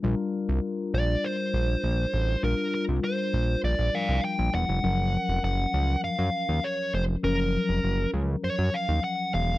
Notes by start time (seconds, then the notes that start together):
0.03 A#1 G3 D4 F4 A#4
0.49 C2
0.94 A#1 D5
1.25 C5
1.54 A#1
1.84 A#1
2.14 A1
2.43 A#1 G3 D4 F4 A#4
2.75 A#4
2.89 C2
3.04 C5
3.34 A#1
3.64 A#1 D5
3.79 A#1
3.93 F3 G3 D4 A#4 F5
4.09 C2
4.25 G5
4.39 A#1
4.54 E1 F#5
4.69 F1
4.82 F#1 F3 F#3 C#4 A#4
5.29 F1
5.44 F#1 F#5
5.74 C#2
6.04 F#2 F5
6.19 F#2
6.49 D#2
6.64 C#5
6.94 F1 C5
7.23 F#1 F3 F#3 C#4 A#4
7.69 F1
7.84 F#1
8.14 C#2
8.44 F#2 C#5
8.59 F#2
8.74 F5
8.89 D#2
9.04 F#5
9.34 E1 F5